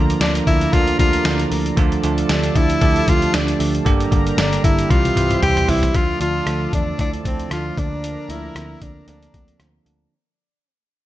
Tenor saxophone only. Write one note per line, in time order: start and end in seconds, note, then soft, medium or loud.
0.22 0.33 D4 medium
0.47 0.74 E4 loud
0.73 0.99 F4 loud
0.99 1.48 F4 loud
2.31 2.58 D4 medium
2.57 3.10 E4 loud
3.09 3.36 F4 loud
3.35 3.75 D4 medium
4.39 4.63 D4 medium
4.64 4.91 E4 loud
4.90 5.42 F4 loud
5.43 5.71 G4 loud
5.69 5.97 E4 loud
5.95 6.21 F4 loud
6.21 6.70 F4 loud
6.75 6.98 D4 medium
7.00 7.12 D4 medium
7.27 7.50 C4 medium
7.53 7.80 F4 medium
7.79 8.32 D4 medium
8.30 8.84 E4 medium
8.83 9.08 D4 medium
9.09 9.83 D4 medium